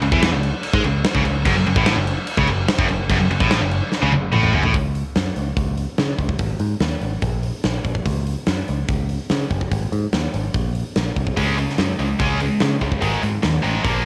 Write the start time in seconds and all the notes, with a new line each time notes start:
0.02 C#2 C#3, crash
0.12 E2 E3, kick
0.23 snare, crash
0.32 C#2 C#3
0.43 crash
0.63 crash
0.74 G#2 G#3, kick
0.84 C#2 C#3, crash
1.04 snare, crash
1.15 C#2 C#3, kick
1.25 C#2 C#3, crash
1.45 F#1 F#2, kick, crash
1.55 F#1 F#2
1.66 F#1 F#2, crash
1.76 A1 A2, kick
1.86 snare, crash
1.97 F#1 F#2
2.07 crash
2.27 crash
2.37 C#2 C#3, kick
2.47 F#1 F#2, crash
2.68 snare, crash
2.79 F#1 F#2, kick
2.89 F#1 F#2, crash
3.10 F#1 F#2, kick, crash
3.20 F#1 F#2
3.31 F#1 F#2, crash
3.40 A1 A2, kick
3.51 snare, crash
3.61 F#1 F#2
3.71 crash
3.92 snare
4.03 C#2 C#3
4.12 F#1 F#2, high tom
4.32 A1 A2, mid tom
4.43 mid tom
4.53 F#1 F#2, floor tom
4.63 A1 A2, floor tom
4.74 C#2, kick, open hi-hat
4.95 open hi-hat
5.16 F#2, snare, open hi-hat
5.36 C#2, open hi-hat
5.57 C#2, kick, open hi-hat
5.77 open hi-hat
5.98 C#3, snare, open hi-hat
6.18 C#2, kick, open hi-hat
6.29 kick
6.39 G#1, kick, open hi-hat
6.59 G#2, open hi-hat
6.80 D#2, snare, open hi-hat
7.01 G#1, open hi-hat
7.22 A#1, kick, open hi-hat
7.43 open hi-hat
7.64 A#1, snare, open hi-hat
7.84 A#1, kick, open hi-hat
7.95 kick
8.06 C#2, kick, open hi-hat
8.27 open hi-hat
8.47 F#2, snare, open hi-hat
8.68 C#2, open hi-hat
8.88 C#2, kick, open hi-hat
9.09 open hi-hat
9.30 C#3, snare, open hi-hat
9.50 F#1, kick, open hi-hat
9.61 kick
9.72 G#1, kick, open hi-hat
9.92 G#2, open hi-hat
10.13 D#2, snare, open hi-hat
10.34 G#1, open hi-hat
10.54 A#1, kick, open hi-hat
10.75 open hi-hat
10.96 A#1, snare, open hi-hat
11.16 C2, kick, open hi-hat
11.27 kick
11.37 C#2 C#3 G#3 C#4, kick, open hi-hat
11.57 C#3 G#3, open hi-hat
11.69 snare
11.78 F#2 C#3 G#3, snare, open hi-hat
11.99 C#2 C#3 G#3, open hi-hat
12.19 C#2 C#3 G#3 C#4, kick, open hi-hat
12.40 C#3 G#3, open hi-hat
12.60 C#3 G#3, snare, open hi-hat
12.81 C#2 C#3 G#3, kick, open hi-hat
12.92 kick
13.01 G#1 G#2 D#3 G#3, kick, open hi-hat
13.23 G#2 D#3, open hi-hat
13.42 D#2 G#2 D#3, snare, open hi-hat
13.62 A1 G#2 D#3 G#3, open hi-hat
13.83 A#1 A#2 F3 A#3, kick, open hi-hat